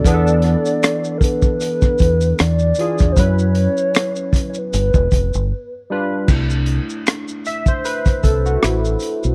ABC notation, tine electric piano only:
X:1
M:4/4
L:1/16
Q:"Swing 16ths" 1/4=77
K:Glyd
V:1 name="Tine electric piano"
[E,B,D^GA]8 z6 [E,D=FG]2 | [F,CEB]8 z6 [G,D=FB]2 | [K:Clyd] [A,DE]2 z4 e c B2 A F E4 |]